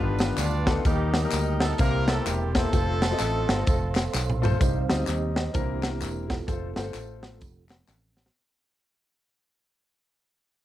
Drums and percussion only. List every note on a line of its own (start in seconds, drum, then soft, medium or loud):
0.19 snare loud
0.19 closed hi-hat medium
0.19 tambourine medium
0.37 clap loud
0.37 closed hi-hat medium
0.37 tambourine loud
0.67 kick loud
0.67 snare loud
0.67 closed hi-hat medium
0.67 tambourine medium
0.85 kick loud
0.85 closed hi-hat medium
0.85 tambourine medium
1.14 snare loud
1.14 closed hi-hat medium
1.14 tambourine medium
1.31 clap loud
1.31 closed hi-hat medium
1.31 tambourine medium
1.60 snare loud
1.60 closed hi-hat medium
1.60 tambourine medium
1.78 kick loud
1.78 closed hi-hat medium
1.78 tambourine medium
2.08 snare loud
2.08 closed hi-hat medium
2.08 tambourine medium
2.26 clap loud
2.26 closed hi-hat medium
2.26 tambourine loud
2.55 kick loud
2.55 snare loud
2.55 closed hi-hat medium
2.55 tambourine medium
2.73 kick loud
2.73 closed hi-hat medium
2.73 tambourine medium
3.02 snare loud
3.02 closed hi-hat medium
3.02 tambourine medium
3.19 clap medium
3.19 closed hi-hat loud
3.19 tambourine medium
3.49 snare loud
3.49 closed hi-hat medium
3.49 tambourine medium
3.67 kick loud
3.67 closed hi-hat medium
3.67 tambourine medium
3.95 snare loud
3.95 clap medium
3.95 closed hi-hat medium
3.95 tambourine medium
4.14 snare medium
4.14 clap loud
4.14 tambourine loud
4.30 mid tom medium
4.43 floor tom loud
4.43 tambourine medium
4.61 kick loud
4.61 closed hi-hat medium
4.61 tambourine medium
4.89 snare loud
4.89 closed hi-hat medium
4.89 tambourine medium
5.07 clap medium
5.07 closed hi-hat loud
5.07 tambourine loud
5.36 snare loud
5.36 closed hi-hat medium
5.36 tambourine medium
5.54 kick loud
5.54 closed hi-hat medium
5.54 tambourine medium
5.83 snare loud
5.83 clap medium
5.83 closed hi-hat medium
5.83 tambourine medium
6.01 clap loud
6.01 closed hi-hat medium
6.01 tambourine loud
6.30 kick loud
6.30 snare loud
6.30 closed hi-hat medium
6.30 tambourine medium
6.48 kick loud
6.48 closed hi-hat medium
6.48 tambourine medium
6.76 snare loud
6.76 closed hi-hat medium
6.76 tambourine medium
6.94 clap loud
6.94 closed hi-hat loud
6.94 tambourine medium
7.23 snare loud
7.23 closed hi-hat medium
7.23 tambourine medium
7.41 kick loud
7.41 closed hi-hat medium
7.41 tambourine medium
7.69 snare loud
7.69 clap medium
7.69 closed hi-hat medium
7.69 tambourine medium
7.88 snare medium
7.88 clap loud
7.88 tambourine loud
8.17 snare medium
8.17 tambourine medium
8.26 snare medium